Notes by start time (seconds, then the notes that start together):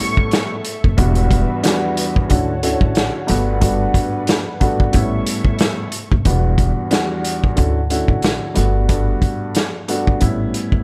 Already playing: A2 G3 B3 C#4 E4 A4 E5 C#6
0.00 C#6
0.17 kick
0.31 snare, closed hi-hat
0.65 closed hi-hat
0.84 F#1, kick
0.97 E1 E2 G3 B3 D4 F#4 B4, kick, closed hi-hat
1.15 closed hi-hat
1.31 kick, closed hi-hat
1.63 E2 G3 B3 D4 F#4, snare, closed hi-hat
1.97 closed hi-hat
2.16 kick
2.27 D2 D3 A3 C#4 E4 F#4 C#5 F#5 A5, kick, closed hi-hat
2.63 D3 A3 C#4 E4 F#4, closed hi-hat
2.81 A1, kick
2.95 snare, closed hi-hat
3.27 G1 G2 A3 B3 D4 F#4 B4, closed hi-hat
3.61 G2 A3 B3 D4 F#4, kick, closed hi-hat
3.94 kick, closed hi-hat
4.27 snare, closed hi-hat
4.60 G2 A3 B3 D4 F#4, kick, closed hi-hat
4.80 kick
4.93 A1 A2 G3 B3 C#4 E4 A4 E5 C#6, kick, closed hi-hat
5.27 closed hi-hat
5.45 kick
5.59 snare, closed hi-hat
5.92 closed hi-hat
6.12 F#1, kick
6.25 E1 E2 G3 B3 D4 F#4, kick, closed hi-hat
6.58 kick, closed hi-hat
6.91 E2 G3 B3 D4 F#4, snare, closed hi-hat
7.25 closed hi-hat
7.44 kick
7.56 D2 D3 A3 C#4 E4 F#4, kick, closed hi-hat
7.90 D3 A3 C#4 E4 F#4, closed hi-hat
8.08 A1, kick
8.22 snare, closed hi-hat
8.54 G1 G2 A3 B3 D4 F#4, closed hi-hat
8.89 G2 A3 B3 D4 F#4, kick, closed hi-hat
9.22 kick, closed hi-hat
9.55 snare, closed hi-hat
9.88 G2 A3 B3 D4 F#4, closed hi-hat
10.07 kick
10.20 A1 A2 G3 B3 C#4 E4, kick, closed hi-hat
10.54 closed hi-hat
10.72 kick